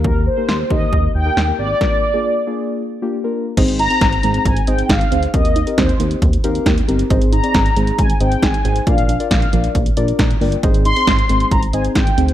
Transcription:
<<
  \new Staff \with { instrumentName = "Analog polysynth" } { \time 4/4 \key aes \lydian \tempo 4 = 136 bes'8 c''4 ees''4 g''4 d''8~ | d''2. r4 | r8 bes''4. aes''8 g''8 f''4 | ees''4 c''4 r2 |
r8 bes''4. aes''8 g''8 aes''4 | f''4 f''4 r2 | r8 c'''4. bes''8 aes''8 g''4 | }
  \new Staff \with { instrumentName = "Synth keys" } { \time 4/4 \key aes \lydian << { r1 | r1 | r1 | r2 \tuplet 3/2 { r8. f''16 f''8 } g''8 bes''8 |
r1 | r2. bes''8 g''8 | r1 | } \\ { <bes ees' g' bes'>8 r16 <bes ees' g' bes'>8 r16 <bes ees' g' bes'>8. r8 <bes ees' g' bes'>16 r16 <bes ees' g' bes'>8 r16 | <bes d' f' bes'>8 r16 <bes d' f' aes'>8 r16 <bes d' f' aes'>8. r8 <bes d' f' g'>16 r16 <bes d' f' bes'>8 r16 | <c' ees' aes' c''>8 r16 <c' ees' aes' c''>8 r16 <c' ees' aes' c''>8. r16 <c' ees' aes' c''>8. r16 <c' ees' aes' c''>16 r16 | <c' ees' g' bes'>8 r16 <c' ees' g' bes'>8 r16 <c' ees' g' c''>8. r16 <c' ees' g' bes'>8. r16 <c' ees' g' bes'>16 r16 |
<c' ees' aes' c''>8 r16 <c' ees' aes' d''>8 r16 <c' ees' aes' c''>8. r16 <c' ees' aes' c''>8. r16 <c' ees' aes' c''>16 r16 | <d' f' bes' d''>8 r16 <d' f' bes' d''>8 r16 <d' f' bes' d''>8. r16 <d' f' bes' d''>8. r16 <d' f' bes' d''>16 r16 | <c' ees' aes' c''>8 r16 <c' ees' aes' c''>8 r16 <c' ees' aes' c''>8. r16 <c' ees' aes' c''>8. r16 <c' ees' aes' c''>16 r16 | } >> }
  \new Staff \with { instrumentName = "Synth arpeggio sound" } { \time 4/4 \key aes \lydian r1 | r1 | ees''8 ees'8 c'8 aes8 r8 ees''8 ees'8 c'8 | g'8 ees'8 c'8 bes8 r8 g'8 ees'8 c'8 |
ees''8 ees'8 c'8 aes8 r8 ees''8 ees'8 c'8 | d''8 d'8 bes8 f8 r8 d''8 d'8 bes8 | ees''8 ees'8 c'8 aes8 r8 ees''8 ees'8 c'8 | }
  \new Staff \with { instrumentName = "Analog synth bass" } { \clef bass \time 4/4 \key aes \lydian ees,4 ees,8 ees,8 ees,8 ees,8 ees,8 aes,,8 | r1 | aes,,4 aes,,8 aes,,8 aes,,8 aes,,8 aes,,8 d,8 | ees,4 ees,8 ees,8 ees,8 ees,8 ees,8 g,,8 |
aes,,4 aes,,8 aes,,8 aes,,8 aes,,8 aes,,8 aes,,8 | bes,,4 bes,,8 bes,,8 bes,,8 bes,,8 bes,,8 g,,8 | aes,,4 aes,,8 aes,,8 aes,,8 aes,,8 aes,,8 d,8 | }
  \new DrumStaff \with { instrumentName = "Drums" } \drummode { \time 4/4 bd4 sn8 bd8 bd4 sn4 | <bd sn>4 r4 r4 r4 | <cymc hh bd>16 hh16 hh16 hh16 <hh bd sn>16 hh16 hh16 hh16 <hh bd>16 hh16 hh16 hh16 <hh bd sn>16 hh16 hh16 hh16 | <hh bd>16 hh16 hh16 hh16 <hh bd sn>16 hh16 hh16 hh16 <hh bd>16 hh16 hh16 hh16 <hh bd sn>16 hh16 hh16 hh16 |
<hh bd>16 hh16 hh16 hh16 <hh bd sn>16 hh16 hh16 hh16 <hh bd>16 hh16 hh16 hh16 <hh bd sn>16 hh16 hh16 hh16 | <hh bd>16 hh16 hh16 hh16 <hh bd sn>16 hh16 hh16 hh16 <hh bd>16 hh16 hh16 hh16 <hh bd sn>16 hh16 hho16 hh16 | <hh bd>16 hh16 hh16 hh16 <hh bd sn>16 hh16 hh16 hh16 <hh bd>16 hh16 hh16 hh16 <hh bd sn>16 hh16 hh16 hh16 | }
>>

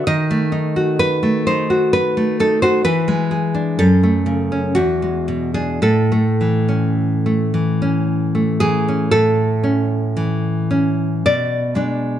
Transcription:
\new Staff \with { instrumentName = "Nylon-string guitar" } { \time 3/4 \key a \major \tempo 4 = 59 << { dis''4 b'8 c''8 b'8 a'16 c''16 | b'4 a'4 fis'8. gis'16 | a'2~ a'8 gis'8 | a'2 d''4 | } \\ { dis16 a16 dis'16 fis'8 a16 dis'16 fis'8 a16 dis'16 fis'16 | e16 gis16 gis'16 d'16 fis,16 a16 cis16 cis'16 e,16 gis16 b,16 d'16 | a,16 a16 e16 cis'8 a16 e16 cis'8 a16 e16 cis'16 | a,8 cis'8 e8 cis'8 b,8 <gis d'>8 | } >> }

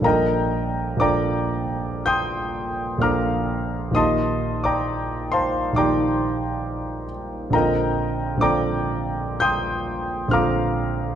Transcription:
<<
  \new Staff \with { instrumentName = "Grand piano" } { \time 4/4 \key bes \major \tempo 4 = 66 <bes' ees'' g'' bes''>4 <d'' g'' bes'' d'''>4 <g'' c''' ees''' g'''>4 <f'' bes'' d''' f'''>4 | <ees'' a'' c''' ees'''>8. <d'' g'' bes'' d'''>8. <c'' f'' a'' c'''>8 <d'' g'' bes'' d'''>4. r8 | <bes' ees'' g'' bes''>4 <d'' g'' bes'' d'''>4 <g'' c''' ees''' g'''>4 <f'' bes'' d''' f'''>4 | }
  \new Staff \with { instrumentName = "Grand piano" } { \time 4/4 \key bes \major <bes,, f bes d' a'>4 <bes,, f bes d' a'>2 <bes,, f bes d' a'>4 | <bes,, ees bes ees' g'>2 <bes,, ees bes ees' g'>2 | <bes,, d c' f' a'>4 <bes,, d c' f' a'>2 <bes,, d c' f' a'>4 | }
>>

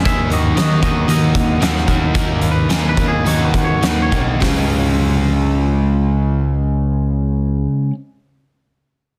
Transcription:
<<
  \new Staff \with { instrumentName = "Clean electric guitar" } { \time 4/4 \key des \major \tempo 4 = 100 <aes' fes''>8 <ges' ees''>8 <ges' ees''>8 <ges' ees''>8 ees''2 | \tuplet 3/2 { r4 ces''8 aes'8 ces''8 aes'8 des''8 ces''8 des''8 ces''8 des''4 } | r1 | r1 | }
  \new Staff \with { instrumentName = "Overdriven electric guitar" } { \time 4/4 \key des \major <ees bes ees'>4 <ees bes ees'>8 <ees bes ees'>8 <ees bes ees'>4 <ees bes ees'>8 <ees bes ees'>8 | <ees bes ees'>4 <ees bes ees'>8 <ees bes ees'>8 <ees bes ees'>4 <ees bes ees'>8 <ees bes ees'>8 | <des aes des'>1~ | <des aes des'>1 | }
  \new Staff \with { instrumentName = "Steel-string acoustic guitar" } { \time 4/4 \key des \major ees8 bes8 ees8 bes8 ges'8 bes8 des'8 bes8 | ees8 bes8 ees8 bes8 ges'8 bes8 des'8 bes8 | <des f aes des' f'>1~ | <des f aes des' f'>1 | }
  \new Staff \with { instrumentName = "Picked electric bass" } { \clef bass \time 4/4 \key des \major ees,8 ees,8 ees,8 ees,8 ees,8 ees,8 ees,8 ees,8 | ees,8 ees,8 ees,8 ees,8 ees,4 ees,8 ces,8 | des,1~ | des,1 | }
  \new DrumStaff \with { instrumentName = "Drums" } \drummode { \time 4/4 <hh bd>8 hh8 <hh sn>8 <hh bd>8 hh8 <hh bd>8 <hh sn>8 <hh bd>8 | <hh bd>8 hh8 <hh sn>8 <hh bd>8 hh8 <hh bd>8 <hh sn>8 <hh bd>8 | <hho bd sn>4 r4 r4 r4 | r4 r4 r4 r4 | }
>>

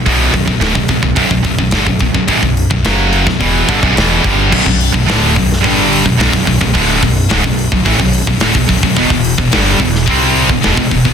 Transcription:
<<
  \new Staff \with { instrumentName = "Distorted electric guitar" } { \clef bass \time 4/4 \key b \minor \tempo 4 = 108 <b,, fis, b,>8 <b,, fis,>16 <b,, fis,>16 <d, a,>16 <b,, fis,>16 <b,, fis,>16 <b,, fis,>16 <b,, fis,>16 <b,, fis,>16 <b,, fis,>16 <b,, fis,>16 <g, d>16 <b,, fis,>16 <b,, fis,>16 <b,, fis,>16 | <b,, fis,>16 <b,, fis,>8 <b,, fis,>16 <fis, cis fis>8. <b,, fis,>16 <e, b, e>8 <g, d>16 <b,, fis,>16 <e, b, e>8 <g, d g>8 | <b,, fis,>16 <b,, fis,>8 <b,, fis,>16 <d, a, d>8 <b,, fis,>8 <g, d g>8. <b,, fis,>16 <b,, fis,>16 <b,, fis,>16 <b,, fis,>16 <b,, fis,>16 | <d, a, d>8 <b,, fis,>8 <cis, gis,>16 <b,, fis,>8 <b,, fis,>16 <a, e>16 <b,, fis,>8 <b,, fis,>16 <d, a,>16 <b,, fis,>16 <b,, fis,>16 <b,, fis,>16 |
<e, b,>16 <e, b,>8 <e, b,>16 <g, d g>8 <e, b,>8 <c g c'>8. <e, b,>16 <e, b,>16 <e, b,>16 <e, b,>16 <e, b,>16 | }
  \new Staff \with { instrumentName = "Distorted electric guitar" } { \clef bass \time 4/4 \key b \minor <b,, fis, b,>8 <b,, fis,>16 <b,, fis,>16 <d, a,>16 <b,, fis,>16 <b,, fis,>16 <b,, fis,>16 <b,, fis,>16 <b,, fis,>16 <b,, fis,>16 <b,, fis,>16 <g, d>16 <b,, fis,>16 <b,, fis,>16 <b,, fis,>16 | <b,, fis,>16 <b,, fis,>8 <b,, fis,>16 <fis, cis fis>8. <b,, fis,>16 <e, b, e>8 <g, d>16 <b,, fis,>16 <e, b, e>8 <g, d g>8 | <b,, fis,>16 <b,, fis,>8 <b,, fis,>16 <d, a, d>8 <b,, fis,>8 <g, d g>8. <b,, fis,>16 <b,, fis,>16 <b,, fis,>16 <b,, fis,>16 <b,, fis,>16 | <d, a, d>8 <b,, fis,>8 <cis, gis,>16 <b,, fis,>8 <b,, fis,>16 <a, e>16 <b,, fis,>8 <b,, fis,>16 <d, a,>16 <b,, fis,>16 <b,, fis,>16 <b,, fis,>16 |
<e, b,>16 <e, b,>8 <e, b,>16 <g, d g>8 <e, b,>8 <c g c'>8. <e, b,>16 <e, b,>16 <e, b,>16 <e, b,>16 <e, b,>16 | }
  \new Staff \with { instrumentName = "Distorted electric guitar" } { \clef bass \time 4/4 \key b \minor r1 | r1 | <b,, fis,>16 <b,, fis,>8 <b,, fis,>16 <d, a, d>8 <b,, fis,>8 <g, d g>8. <b,, fis,>16 <b,, fis,>16 <b,, fis,>16 <b,, fis,>16 <b,, fis,>16 | <d, a, d>8 <b,, fis,>8 <cis, gis,>16 <b,, fis,>8 <b,, fis,>16 <a, e>16 <b,, fis,>8 <b,, fis,>16 <d, a,>16 <b,, fis,>16 <b,, fis,>16 <b,, fis,>16 |
<e, b,>16 <e, b,>8 <e, b,>16 <g, d g>8 <e, b,>8 <c g c'>8. <e, b,>16 <e, b,>16 <e, b,>16 <e, b,>16 <e, b,>16 | }
  \new Staff \with { instrumentName = "Upright bass" } { \clef bass \time 4/4 \key b \minor b,,8 b,,16 b,,16 d,,16 b,,16 b,,16 b,,16 b,,16 b,,16 b,,16 b,,16 g,,16 b,,16 b,,16 b,,16 | b,,16 b,,8 b,,16 fis,,8. b,,16 e,,8 g,,16 b,,16 e,,8 g,,8 | b,,16 b,,8 b,,16 d,,8 b,,8 g,,8. b,,16 b,,16 b,,16 b,,16 b,,16 | d,,8 b,,8 cis,,16 b,,8 b,,16 a,,16 b,,8 b,,16 d,,16 b,,16 b,,16 b,,16 |
e,,16 e,,8 e,,16 g,,8 e,,8 c,8. e,,16 e,,16 e,,16 e,,16 e,,16 | }
  \new DrumStaff \with { instrumentName = "Drums" } \drummode { \time 4/4 <hho bd>8 bd16 bd16 <hho sn>16 bd16 <hho bd>16 bd16 <hho bd>16 bd16 <hho bd>16 bd16 <hho sn>16 bd16 <hho bd>16 bd16 | <hho bd>16 bd16 hho16 bd16 <hho sn>8 hho16 <bd sn>16 <hho bd>8 <hho bd>16 bd16 <hho sn>8 <hho bd>8 | <cymc bd>16 bd16 hho16 bd16 <hho sn>8 <hho bd>16 sn16 <hho bd>8 hho16 bd16 <hho sn>16 <bd sn>16 <hho bd>16 bd16 | <hho bd>8 <hho bd>8 <hho sn>16 bd16 hho16 bd16 <hho bd>16 bd16 hho16 bd16 <hho sn>16 bd16 <hho bd>16 bd16 |
<hho bd>16 bd16 hho16 bd16 <hho sn>8 <hho bd>16 sn16 <hho bd>8 hho16 bd16 <hho sn>16 bd16 <hho bd>16 bd16 | }
>>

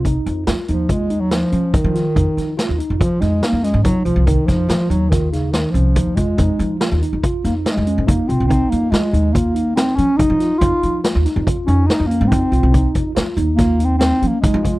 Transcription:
<<
  \new Staff \with { instrumentName = "Tine electric piano" } { \time 5/4 \key f \minor \tempo 4 = 142 ees'4 f'8 ees'8 f'8 ees'4 des'8 ees'8 f'8 | ees'4 f'8 ees'8 f'8 ees'4 des'8 ees'8 f'8 | ees'4 f'8 ees'8 f'8 ees'4 des'8 ees'8 f'8 | ees'4 f'8 ees'8 f'8 ees'4 des'8 ees'8 f'8 |
ees'4 f'8 ees'8 f'8 ees'4 des'8 ees'8 f'8 | ees'4 f'8 ees'8 f'8 ees'4 des'8 ees'8 f'8 | ees'4 f'8 ees'8 f'8 ees'4 des'8 ees'8 f'8 | }
  \new Staff \with { instrumentName = "Bass clarinet" } { \clef bass \time 5/4 \key f \minor r4. f8 \tuplet 3/2 { aes4 ges8 } f4 ees4~ | ees4. r8 f8 aes8 bes8 aes8 ges8 f8 | ees8 f4 ges8 ees8 des8 ees8 f4 aes8~ | aes4 r4. bes8 aes4 bes8 c'8 |
c'8 bes8 aes4 bes4 c'8 des'8 ees'4 | f'4 r4. des'8 ees'8 bes8 c'4~ | c'8 r4. \tuplet 3/2 { bes4 c'8 c'4 bes8 } aes4 | }
  \new Staff \with { instrumentName = "Upright bass" } { \clef bass \time 5/4 \key f \minor c,16 r16 f,8 f16 r16 ees,2 f16 r16 f16 f8 r16 | f,16 r16 f8. ees,16 r16 f,8 r16 f,8 r16 f,8 aes,16 f,16 r16 c,16 c,16~ | c,16 r16 f,8 f16 r16 ees,2 c,8 ees,8 f,8 | f,16 r16 f8. ees,16 r16 f,8 r16 f,8 r16 f,8 aes,16 f,16 r16 c,16 c,16~ |
c,16 r16 f,8 f16 r16 ees,2 f16 r16 f16 f8 r16 | f,16 r16 f8. ees,16 r16 f,8 r16 f,8 r16 f,8 aes,16 f,16 r16 c,16 c,16~ | c,16 r16 f,8 f16 r16 ees,2 f16 r16 f16 f8 r16 | }
  \new DrumStaff \with { instrumentName = "Drums" } \drummode { \time 5/4 <hh bd>8 hh8 <hh sn>8 hh8 <hh bd>8 hh8 <hh sn>8 hh8 <hh bd>8 <hh sn>8 | <hh bd>8 <hh sn>8 <hh sn>8 hh8 <hh bd>8 <hh sn>8 <hh sn>8 <hh sn>8 <hh bd>8 hh8 | <hh bd>8 <hh bd sn>8 <hh sn>8 hh8 <hh bd sn>8 <hh sn>8 <hh sn>8 hh8 <hh bd>8 <hh bd>8 | <hh bd>8 hh8 <hh sn>8 hh8 <hh bd>8 <hh sn>8 <hh sn>8 hh8 <hh bd>8 hh8 |
<hh bd>8 hh8 <hh sn>8 hh8 <hh bd>8 hh8 <hh sn>8 hh8 <hh bd>8 <hh sn>8 | <hh bd>8 hh8 <hh sn>8 <hh sn>8 <hh bd>8 hh8 <hh sn>8 hh8 <hh bd>8 hh8 | <hh bd>8 <hh bd>8 <hh sn>8 hh8 <hh bd sn>8 hh8 <hh sn>8 hh8 <hh bd>8 <hh bd>8 | }
>>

